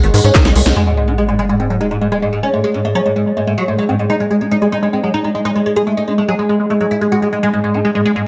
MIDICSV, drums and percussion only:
0, 0, Header, 1, 2, 480
1, 0, Start_track
1, 0, Tempo, 416667
1, 880, Time_signature, 4, 2, 24, 8
1, 9533, End_track
2, 0, Start_track
2, 0, Title_t, "Drums"
2, 40, Note_on_c, 9, 42, 43
2, 155, Note_off_c, 9, 42, 0
2, 160, Note_on_c, 9, 46, 103
2, 164, Note_on_c, 9, 54, 89
2, 275, Note_off_c, 9, 46, 0
2, 279, Note_off_c, 9, 54, 0
2, 280, Note_on_c, 9, 42, 41
2, 283, Note_on_c, 9, 54, 54
2, 395, Note_off_c, 9, 42, 0
2, 398, Note_off_c, 9, 54, 0
2, 400, Note_on_c, 9, 36, 121
2, 400, Note_on_c, 9, 38, 60
2, 400, Note_on_c, 9, 39, 118
2, 400, Note_on_c, 9, 42, 94
2, 515, Note_off_c, 9, 36, 0
2, 515, Note_off_c, 9, 38, 0
2, 515, Note_off_c, 9, 39, 0
2, 515, Note_off_c, 9, 42, 0
2, 519, Note_on_c, 9, 38, 65
2, 519, Note_on_c, 9, 42, 43
2, 635, Note_off_c, 9, 38, 0
2, 635, Note_off_c, 9, 42, 0
2, 638, Note_on_c, 9, 54, 89
2, 639, Note_on_c, 9, 46, 105
2, 754, Note_off_c, 9, 54, 0
2, 755, Note_off_c, 9, 46, 0
2, 758, Note_on_c, 9, 54, 55
2, 760, Note_on_c, 9, 38, 84
2, 760, Note_on_c, 9, 42, 42
2, 873, Note_off_c, 9, 54, 0
2, 875, Note_off_c, 9, 38, 0
2, 875, Note_off_c, 9, 42, 0
2, 9533, End_track
0, 0, End_of_file